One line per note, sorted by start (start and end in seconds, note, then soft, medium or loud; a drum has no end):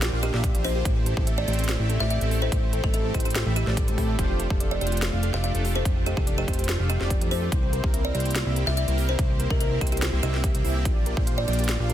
0.00 0.11 A#1 medium
0.00 0.10 A#3 medium
0.00 0.10 D4 medium
0.00 0.10 F4 medium
0.00 0.12 F4 medium
0.00 0.10 G4 medium
0.00 0.10 D5 loud
0.00 0.10 D5 medium
0.00 snare loud
0.00 closed hi-hat medium
0.13 0.32 A#1 loud
0.13 0.31 A#3 medium
0.13 0.31 D4 medium
0.13 0.31 F4 medium
0.13 0.31 G4 medium
0.13 0.19 G4 loud
0.13 0.31 F5 medium
0.23 0.36 G4 medium
0.23 0.30 A#4 loud
0.23 closed hi-hat medium
0.34 0.52 A#1 loud
0.34 0.52 A#3 medium
0.34 0.52 D4 medium
0.34 0.52 F4 medium
0.34 0.52 G4 medium
0.34 0.40 D5 loud
0.34 0.52 E5 loud
0.34 snare soft
0.44 0.54 F5 loud
0.44 kick loud
0.44 closed hi-hat medium
0.55 0.83 A#1 medium
0.55 0.83 A#3 medium
0.55 0.83 D4 medium
0.55 0.83 F4 medium
0.55 0.83 G4 medium
0.55 0.83 C5 medium
0.55 0.64 D5 medium
0.55 closed hi-hat medium
0.65 0.72 G4 medium
0.65 0.90 C5 medium
0.65 open hi-hat medium
0.76 0.79 G4 loud
0.85 1.15 A1 loud
0.85 1.14 A3 medium
0.85 1.14 C4 medium
0.85 1.14 E4 medium
0.85 0.96 E4 medium
0.85 1.14 G4 medium
0.85 1.14 C5 medium
0.85 kick loud
0.85 closed hi-hat medium
0.96 1.03 G4 loud
1.06 1.13 A4 loud
1.06 closed hi-hat medium
1.17 1.46 A1 loud
1.17 1.46 A3 loud
1.17 1.46 C4 loud
1.17 1.46 E4 loud
1.17 1.46 G4 loud
1.17 1.45 A4 loud
1.17 1.46 A4 loud
1.17 1.24 C5 loud
1.17 kick loud
1.27 1.37 E5 loud
1.27 closed hi-hat medium
1.38 1.48 C5 medium
1.38 1.44 D5 medium
1.48 1.77 A1 loud
1.48 1.77 A3 medium
1.48 1.77 C4 medium
1.48 1.77 E4 medium
1.48 1.77 G4 medium
1.48 1.55 G4 medium
1.48 1.77 C5 medium
1.48 1.55 D5 medium
1.48 closed hi-hat soft
1.53 closed hi-hat medium
1.59 1.63 G4 loud
1.59 closed hi-hat medium
1.64 closed hi-hat medium
1.69 1.79 E4 medium
1.69 snare loud
1.69 closed hi-hat medium
1.79 1.98 A1 loud
1.79 1.98 A3 medium
1.79 1.98 C4 medium
1.79 1.98 E4 medium
1.79 1.98 G4 medium
1.79 1.86 G4 loud
1.79 1.98 E5 medium
1.90 1.97 A4 loud
1.90 closed hi-hat medium
2.00 2.19 A1 medium
2.00 2.19 A3 medium
2.00 2.19 C4 medium
2.00 2.19 E4 medium
2.00 2.19 G4 medium
2.00 2.07 C5 loud
2.00 2.19 D5 loud
2.00 2.07 E5 medium
2.00 snare soft
2.10 2.17 E5 medium
2.10 2.21 E5 loud
2.10 closed hi-hat medium
2.21 2.50 A1 loud
2.21 2.50 A3 medium
2.21 2.50 C4 medium
2.21 2.50 E4 medium
2.21 2.50 G4 medium
2.21 2.50 A4 medium
2.21 2.31 C5 medium
2.21 closed hi-hat medium
2.31 2.38 G4 medium
2.31 open hi-hat medium
2.42 2.46 G4 loud
2.42 2.55 C5 medium
2.52 2.82 A1 loud
2.52 2.81 A3 medium
2.52 2.81 C4 medium
2.52 2.81 E4 medium
2.52 2.62 E4 medium
2.52 2.81 G4 medium
2.52 2.81 C5 medium
2.52 kick loud
2.52 closed hi-hat medium
2.63 2.69 G4 loud
2.73 2.80 A4 loud
2.73 closed hi-hat medium
2.84 3.13 A1 loud
2.84 3.12 A3 loud
2.84 3.12 C4 loud
2.84 3.12 E4 medium
2.84 3.12 G4 medium
2.84 2.90 A4 medium
2.84 3.12 A4 loud
2.84 2.90 C5 loud
2.84 kick loud
2.94 3.01 A4 medium
2.94 3.04 E5 loud
2.94 closed hi-hat medium
3.05 3.14 C5 medium
3.14 3.44 A1 loud
3.14 3.44 A3 medium
3.14 3.44 C4 medium
3.14 3.44 E4 medium
3.14 3.21 G4 medium
3.14 3.44 G4 medium
3.14 3.22 G4 medium
3.14 3.44 C5 medium
3.14 kick medium
3.14 closed hi-hat soft
3.20 closed hi-hat medium
3.25 3.32 G4 medium
3.25 3.29 G4 loud
3.25 closed hi-hat soft
3.30 closed hi-hat medium
3.35 3.46 E4 medium
3.35 snare loud
3.35 closed hi-hat medium
3.46 3.65 A1 medium
3.46 3.65 A3 medium
3.46 3.65 C4 medium
3.46 3.65 E4 medium
3.46 3.65 G4 medium
3.46 3.53 G4 loud
3.46 3.64 E5 medium
3.46 3.65 E5 medium
3.56 4.15 G4 medium
3.56 3.63 C5 medium
3.56 closed hi-hat medium
3.67 3.90 A1 medium
3.67 3.85 A3 medium
3.67 3.85 C4 medium
3.67 3.85 E4 medium
3.67 3.85 G4 medium
3.67 3.71 C5 medium
3.67 3.85 D5 loud
3.67 snare soft
3.77 3.84 A4 medium
3.77 kick loud
3.77 closed hi-hat medium
3.88 4.17 A2 loud
3.88 4.16 A3 medium
3.88 4.16 C4 medium
3.88 4.16 E4 medium
3.88 4.16 G4 medium
3.88 4.16 A4 medium
3.88 3.94 C5 medium
3.88 closed hi-hat medium
3.98 4.05 E5 medium
3.98 kick medium
3.98 open hi-hat medium
4.09 4.13 E5 medium
4.19 4.48 F1 loud
4.19 4.48 A3 medium
4.19 4.48 D4 medium
4.19 4.29 F4 medium
4.19 4.48 F4 medium
4.19 4.48 G4 medium
4.19 4.48 C5 medium
4.19 kick loud
4.19 closed hi-hat medium
4.30 4.36 G4 loud
4.40 4.47 A4 loud
4.40 closed hi-hat medium
4.50 4.79 F1 loud
4.50 4.79 A3 loud
4.50 4.79 D4 loud
4.50 4.79 F4 loud
4.50 4.79 G4 loud
4.50 4.79 A4 loud
4.50 4.57 C5 loud
4.50 kick loud
4.60 4.71 D5 loud
4.60 closed hi-hat medium
4.71 4.81 C5 medium
4.71 4.78 D5 medium
4.81 5.11 F1 loud
4.81 5.10 A3 medium
4.81 5.10 D4 medium
4.81 5.10 F4 medium
4.81 5.10 G4 medium
4.81 4.88 G4 medium
4.81 5.10 C5 medium
4.81 4.88 D5 medium
4.81 closed hi-hat medium
4.87 closed hi-hat medium
4.92 4.96 G4 loud
4.92 closed hi-hat medium
4.97 closed hi-hat medium
5.02 5.12 F4 medium
5.02 snare loud
5.02 closed hi-hat medium
5.13 5.32 F1 loud
5.13 5.31 A3 medium
5.13 5.31 D4 medium
5.13 5.31 F4 medium
5.13 5.19 G4 loud
5.13 5.31 G4 medium
5.13 5.31 F5 medium
5.23 5.30 A4 loud
5.23 closed hi-hat medium
5.34 5.52 F1 loud
5.34 5.52 A3 medium
5.34 5.52 D4 medium
5.34 5.52 F4 medium
5.34 5.52 G4 medium
5.34 5.40 C5 loud
5.34 5.52 D5 loud
5.34 5.40 F5 medium
5.34 snare soft
5.44 5.54 D5 loud
5.44 5.51 F5 medium
5.44 closed hi-hat medium
5.54 5.83 F1 loud
5.54 5.83 A3 medium
5.54 5.83 D4 medium
5.54 5.83 F4 medium
5.54 5.83 G4 medium
5.54 5.83 A4 medium
5.54 5.64 C5 medium
5.54 closed hi-hat medium
5.65 5.72 G4 medium
5.65 open hi-hat medium
5.75 5.79 G4 loud
5.75 5.88 C5 medium
5.85 6.15 F1 loud
5.85 6.15 A3 medium
5.85 6.15 D4 medium
5.85 5.96 F4 medium
5.85 6.15 F4 medium
5.85 6.15 G4 medium
5.85 6.14 C5 medium
5.85 6.15 C5 medium
5.85 kick loud
5.85 closed hi-hat medium
5.96 6.03 G4 loud
6.06 6.13 G4 medium
6.06 6.13 A4 loud
6.06 closed hi-hat medium
6.17 6.46 F1 loud
6.17 6.46 A3 loud
6.17 6.46 D4 loud
6.17 6.46 F4 loud
6.17 6.23 G4 medium
6.17 6.46 G4 loud
6.17 6.46 A4 loud
6.17 6.24 C5 loud
6.17 kick loud
6.27 6.37 D5 loud
6.27 closed hi-hat medium
6.38 6.44 G4 medium
6.38 6.47 C5 medium
6.48 6.77 F1 loud
6.48 6.77 A3 medium
6.48 6.77 D4 medium
6.48 6.77 F4 medium
6.48 6.55 G4 medium
6.48 6.77 G4 medium
6.48 6.55 G4 medium
6.48 6.77 C5 medium
6.48 6.77 C5 loud
6.48 kick medium
6.48 closed hi-hat medium
6.53 closed hi-hat medium
6.59 6.63 G4 loud
6.59 closed hi-hat medium
6.64 closed hi-hat medium
6.69 6.79 F4 medium
6.69 snare loud
6.80 6.98 F1 loud
6.80 6.98 A3 medium
6.80 6.98 D4 medium
6.80 6.98 F4 medium
6.80 6.86 G4 loud
6.80 6.98 G4 medium
6.80 6.98 F5 medium
6.90 7.03 G4 medium
6.90 6.97 A4 loud
6.90 closed hi-hat medium
7.00 7.19 F1 loud
7.00 7.19 A3 medium
7.00 7.19 D4 medium
7.00 7.19 F4 medium
7.00 7.19 G4 medium
7.00 7.07 C5 loud
7.00 7.19 D5 loud
7.00 snare soft
7.10 7.21 D5 loud
7.10 kick loud
7.10 closed hi-hat medium
7.21 7.50 F2 loud
7.21 7.50 A3 medium
7.21 7.50 D4 medium
7.21 7.50 F4 medium
7.21 7.50 G4 medium
7.21 7.50 A4 medium
7.21 7.31 C5 medium
7.21 closed hi-hat medium
7.31 7.38 G4 medium
7.31 7.56 C5 medium
7.31 open hi-hat medium
7.42 7.46 G4 loud
7.52 7.82 C2 loud
7.52 7.81 A#3 medium
7.52 7.81 C4 medium
7.52 7.62 E4 medium
7.52 7.81 E4 medium
7.52 7.81 G4 medium
7.52 7.81 C5 medium
7.52 kick loud
7.52 closed hi-hat medium
7.63 7.69 G4 loud
7.73 7.80 A#4 loud
7.73 closed hi-hat medium
7.84 8.13 C2 loud
7.84 8.12 A#3 loud
7.84 8.12 C4 loud
7.84 8.12 E4 loud
7.84 8.12 G4 loud
7.84 8.12 A#4 loud
7.84 7.90 C5 loud
7.84 kick loud
7.94 8.04 E5 loud
7.94 closed hi-hat medium
8.05 8.14 C5 medium
8.05 8.11 D5 medium
8.14 8.44 C2 loud
8.14 8.44 A#3 medium
8.14 8.44 C4 medium
8.14 8.44 E4 medium
8.14 8.44 G4 medium
8.14 8.22 G4 medium
8.14 8.44 C5 medium
8.14 8.22 D5 medium
8.14 closed hi-hat soft
8.20 closed hi-hat medium
8.25 8.29 G4 loud
8.25 closed hi-hat medium
8.31 closed hi-hat medium
8.35 8.46 E4 medium
8.35 snare loud
8.35 closed hi-hat medium
8.46 8.65 C2 loud
8.46 8.65 A#3 medium
8.46 8.65 C4 medium
8.46 8.65 E4 medium
8.46 8.65 G4 medium
8.46 8.53 G4 loud
8.46 8.64 E5 medium
8.46 8.65 E5 medium
8.56 8.63 A#4 loud
8.56 closed hi-hat medium
8.67 8.86 C2 loud
8.67 8.85 A#3 loud
8.67 8.85 C4 medium
8.67 8.85 E4 medium
8.67 8.85 G4 medium
8.67 8.74 C5 loud
8.67 8.85 D5 loud
8.67 8.73 E5 medium
8.67 snare soft
8.77 8.87 E5 loud
8.77 8.84 E5 medium
8.77 closed hi-hat medium
8.88 9.17 C2 loud
8.88 9.16 A#3 medium
8.88 9.16 C4 medium
8.88 9.16 E4 medium
8.88 9.16 G4 medium
8.88 9.16 A#4 medium
8.88 8.97 C5 medium
8.88 closed hi-hat medium
8.98 9.05 G4 medium
8.98 open hi-hat medium
9.09 9.13 G4 loud
9.09 9.21 C5 medium
9.19 9.48 C2 loud
9.19 9.48 A#3 medium
9.19 9.48 C4 medium
9.19 9.48 E4 medium
9.19 9.29 E4 medium
9.19 9.48 G4 medium
9.19 9.48 C5 medium
9.19 kick loud
9.19 closed hi-hat medium
9.30 9.36 G4 loud
9.40 9.47 A#4 loud
9.40 closed hi-hat medium
9.50 9.79 C2 loud
9.50 9.79 A#3 loud
9.50 9.79 C4 medium
9.50 9.79 E4 medium
9.50 9.79 G4 loud
9.50 9.79 A#4 loud
9.50 9.57 A#4 medium
9.50 9.57 C5 loud
9.50 kick loud
9.60 9.67 A#4 medium
9.60 9.71 E5 loud
9.60 closed hi-hat medium
9.71 9.81 C5 medium
9.81 10.11 C2 loud
9.81 10.10 A#3 medium
9.81 10.10 C4 medium
9.81 10.10 E4 medium
9.81 10.10 G4 medium
9.81 9.88 G4 medium
9.81 10.10 C5 medium
9.81 kick medium
9.81 closed hi-hat soft
9.87 closed hi-hat medium
9.92 9.99 G4 medium
9.92 9.96 G4 loud
9.92 closed hi-hat soft
9.97 closed hi-hat medium
10.02 10.12 E4 medium
10.02 snare loud
10.02 closed hi-hat medium
10.13 10.21 C2 loud
10.13 10.21 A#3 medium
10.13 10.21 C4 medium
10.13 10.21 E4 medium
10.13 10.21 G4 medium
10.13 10.19 G4 loud
10.13 10.21 E5 medium
10.23 10.52 C2 loud
10.23 10.52 A#3 medium
10.23 10.52 C4 medium
10.23 10.52 E4 medium
10.23 10.52 G4 medium
10.23 10.81 G4 medium
10.23 10.30 C5 medium
10.23 10.52 E5 medium
10.23 closed hi-hat medium
10.34 10.38 A#4 medium
10.34 snare soft
10.44 10.48 A#4 medium
10.44 kick loud
10.44 closed hi-hat medium
10.55 10.63 C2 medium
10.55 10.62 A#3 medium
10.55 10.62 C4 medium
10.55 10.62 E4 medium
10.55 10.62 G4 medium
10.55 10.64 A#4 medium
10.55 10.62 E5 medium
10.55 closed hi-hat medium
10.64 10.87 C2 loud
10.64 10.83 A#3 medium
10.64 10.83 C4 medium
10.64 10.72 E4 loud
10.64 10.83 E4 medium
10.64 10.83 G4 medium
10.64 10.83 E5 loud
10.64 open hi-hat medium
10.75 10.79 G5 medium
10.85 11.15 A#1 loud
10.85 11.14 A#3 medium
10.85 11.14 D4 medium
10.85 10.96 F4 medium
10.85 11.14 F4 medium
10.85 11.14 G4 medium
10.85 11.14 D5 loud
10.85 11.14 D5 medium
10.85 kick loud
10.85 closed hi-hat medium
10.96 11.03 G4 loud
11.06 11.13 A#4 loud
11.06 closed hi-hat medium
11.17 11.46 A#1 loud
11.17 11.46 A#3 loud
11.17 11.46 D4 loud
11.17 11.46 F4 loud
11.17 11.46 G4 loud
11.17 11.45 C5 loud
11.17 11.46 C5 loud
11.17 11.23 D5 loud
11.17 kick loud
11.27 11.37 F5 loud
11.27 closed hi-hat medium
11.38 11.47 D5 medium
11.38 11.44 D5 medium
11.48 11.77 A#1 loud
11.48 11.77 A#3 medium
11.48 11.77 D4 medium
11.48 11.77 F4 medium
11.48 11.55 G4 medium
11.48 11.77 G4 medium
11.48 11.77 D5 medium
11.48 11.55 D5 medium
11.48 11.77 D5 medium
11.48 closed hi-hat soft
11.53 closed hi-hat medium
11.59 11.63 G4 loud
11.59 closed hi-hat soft
11.64 closed hi-hat medium
11.69 11.79 F4 medium
11.69 snare loud
11.69 closed hi-hat medium
11.79 11.93 A#1 loud
11.79 11.93 A#3 medium
11.79 11.93 D4 medium
11.79 11.93 F4 medium
11.79 11.93 G4 medium
11.79 11.86 G4 loud
11.79 11.93 F5 medium
11.90 11.93 A#4 loud
11.90 closed hi-hat medium